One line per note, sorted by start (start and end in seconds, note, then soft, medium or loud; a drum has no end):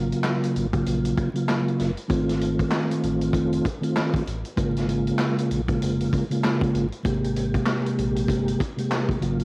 0.00 0.13 G#1 loud
0.00 0.66 C#3 medium
0.00 0.66 F#3 medium
0.00 0.67 A#3 medium
0.00 0.67 F4 medium
0.12 closed hi-hat medium
0.24 snare loud
0.24 clap medium
0.43 closed hi-hat medium
0.56 0.82 G#1 medium
0.56 closed hi-hat medium
0.72 1.29 C#3 medium
0.72 1.29 F#3 medium
0.72 1.30 A#3 medium
0.72 1.30 F4 loud
0.72 kick loud
0.72 closed hi-hat medium
0.86 1.13 A#1 loud
0.86 closed hi-hat medium
1.05 closed hi-hat medium
1.18 kick medium
1.18 closed hi-hat medium
1.33 1.90 C#3 loud
1.33 1.91 F#3 medium
1.33 1.91 A#3 medium
1.33 1.92 F4 loud
1.33 closed hi-hat medium
1.49 snare loud
1.49 clap medium
1.68 closed hi-hat medium
1.79 1.95 F#1 medium
1.79 snare soft
1.79 closed hi-hat medium
1.97 closed hi-hat soft
2.08 2.64 G#1 loud
2.08 3.66 D#3 medium
2.08 3.66 A3 medium
2.08 3.66 C4 medium
2.08 3.67 F4 loud
2.08 kick loud
2.08 closed hi-hat medium
2.29 snare soft
2.29 closed hi-hat medium
2.41 closed hi-hat medium
2.59 kick medium
2.59 closed hi-hat medium
2.71 snare loud
2.71 clap medium
2.91 closed hi-hat medium
3.03 3.30 A1 medium
3.03 closed hi-hat medium
3.21 closed hi-hat medium
3.33 3.61 F1 loud
3.33 kick medium
3.33 closed hi-hat medium
3.53 closed hi-hat medium
3.65 kick medium
3.65 closed hi-hat medium
3.81 4.22 D#3 medium
3.81 4.23 A3 medium
3.81 4.23 C4 medium
3.81 4.24 F4 loud
3.81 closed hi-hat medium
3.96 snare loud
3.96 clap medium
4.14 kick loud
4.14 closed hi-hat medium
4.27 4.43 A1 medium
4.27 closed hi-hat medium
4.45 closed hi-hat soft
4.56 5.11 G#1 loud
4.56 4.85 C#3 loud
4.56 4.86 G#3 medium
4.56 4.86 A#3 medium
4.56 4.87 F4 loud
4.56 kick loud
4.56 closed hi-hat loud
4.77 snare soft
4.77 closed hi-hat soft
4.86 5.60 C#3 medium
4.86 5.61 G#3 medium
4.86 5.61 A#3 medium
4.86 5.62 F4 loud
4.86 closed hi-hat medium
5.07 closed hi-hat medium
5.19 snare loud
5.19 clap medium
5.38 closed hi-hat medium
5.51 5.77 A#1 loud
5.51 closed hi-hat medium
5.67 6.24 C#3 medium
5.67 6.24 G#3 medium
5.67 6.25 A#3 medium
5.67 6.25 F4 loud
5.67 kick loud
5.67 closed hi-hat medium
5.82 6.08 F1 loud
5.82 closed hi-hat medium
6.00 closed hi-hat medium
6.13 kick medium
6.13 closed hi-hat medium
6.29 6.86 C#3 loud
6.29 6.86 G#3 medium
6.29 6.87 A#3 medium
6.29 6.87 F4 loud
6.29 closed hi-hat medium
6.44 snare loud
6.44 clap loud
6.61 kick loud
6.61 closed hi-hat medium
6.75 6.90 G#1 medium
6.75 closed hi-hat medium
6.92 closed hi-hat soft
7.03 7.59 G#1 loud
7.03 8.61 C3 loud
7.03 8.61 G#3 loud
7.03 8.62 A#3 medium
7.03 8.62 G4 loud
7.03 kick loud
7.03 closed hi-hat medium
7.24 closed hi-hat soft
7.36 closed hi-hat medium
7.54 kick medium
7.54 closed hi-hat medium
7.66 snare loud
7.66 clap medium
7.86 closed hi-hat medium
7.98 8.25 A#1 loud
7.98 closed hi-hat medium
8.16 closed hi-hat medium
8.28 8.55 G1 loud
8.28 kick medium
8.28 closed hi-hat medium
8.48 closed hi-hat medium
8.60 kick medium
8.60 closed hi-hat medium
8.76 9.17 C3 loud
8.76 9.18 G#3 medium
8.76 9.18 A#3 medium
8.76 9.19 G4 loud
8.76 closed hi-hat medium
8.91 snare loud
8.91 clap medium
9.09 kick loud
9.09 closed hi-hat medium
9.20 9.44 G#1 loud
9.20 9.44 C#3 loud
9.20 9.44 F#3 medium
9.20 9.44 A#3 medium
9.20 9.44 F4 loud
9.20 closed hi-hat medium
9.40 closed hi-hat soft